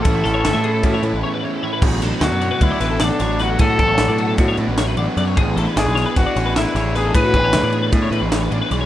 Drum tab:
CC |---------|x--------|---------|---------|
RD |xxxxxx---|-xxxxxxxx|xxxxxxxxx|xxxxxxxxx|
SD |-oo------|-oo--oooo|--o---o--|--ooo-ooo|
BD |o---o----|o---o----|oo--o----|o---o----|

CC |---------|
RD |xxxxxxxxx|
SD |--o---o--|
BD |oo--o----|